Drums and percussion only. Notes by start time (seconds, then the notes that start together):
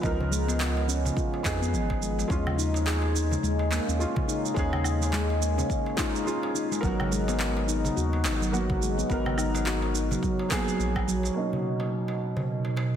0.03 kick, shaker
0.20 darbuka dum
0.33 shaker
0.48 darbuka tek, shaker
0.60 clap, shaker
0.77 darbuka tek
0.89 shaker
1.05 darbuka ka, darbuka dum, shaker
1.17 kick, shaker
1.34 darbuka ka
1.45 kick, clap, darbuka tek, shaker
1.62 darbuka ka, shaker
1.74 shaker
1.90 kick, darbuka ka
2.03 shaker
2.19 darbuka ka, shaker
2.30 kick, shaker
2.47 darbuka dum, low woodblock
2.59 shaker
2.74 darbuka tek, shaker
2.87 clap, shaker
3.02 darbuka tek
3.16 shaker
3.31 darbuka ka, darbuka dum, shaker
3.44 shaker
3.59 darbuka ka
3.72 clap, darbuka ka, darbuka tek, shaker
3.88 darbuka ka, shaker
4.01 shaker
4.16 kick, darbuka dum
4.29 shaker
4.46 shaker
4.56 kick, shaker
4.73 darbuka dum, low woodblock
4.84 low woodblock, shaker
5.02 darbuka tek, shaker
5.13 clap, shaker
5.30 darbuka tek
5.42 shaker
5.58 darbuka ka, darbuka dum, shaker
5.70 kick, shaker
5.86 darbuka ka
5.98 kick, clap, darbuka tek, shaker
6.15 darbuka ka, shaker
6.27 shaker
6.43 darbuka ka
6.56 shaker
6.72 darbuka ka, shaker
6.83 kick, shaker
7.00 darbuka dum, low woodblock
7.12 shaker
7.28 darbuka tek, shaker
7.40 clap, shaker
7.57 darbuka tek
7.69 shaker
7.85 darbuka ka, darbuka dum, shaker
7.97 shaker
8.13 darbuka ka
8.25 clap, darbuka ka, darbuka tek, shaker
8.41 darbuka ka, shaker
8.54 shaker
8.69 kick, darbuka dum
8.82 shaker
8.99 shaker
9.10 kick, shaker
9.26 darbuka dum, low woodblock
9.38 low woodblock, shaker
9.55 darbuka tek, shaker
9.66 clap, shaker
9.82 darbuka tek
9.95 shaker
10.11 darbuka ka, darbuka dum, shaker
10.23 kick, shaker
10.39 darbuka ka
10.51 kick, clap, darbuka tek, shaker
10.68 darbuka ka, shaker
10.80 shaker
10.96 kick, darbuka ka, low woodblock
11.09 shaker
11.23 darbuka ka, shaker
11.53 darbuka dum
11.80 darbuka tek
12.08 darbuka tek
12.37 darbuka ka, darbuka dum
12.65 darbuka ka
12.77 darbuka ka, darbuka tek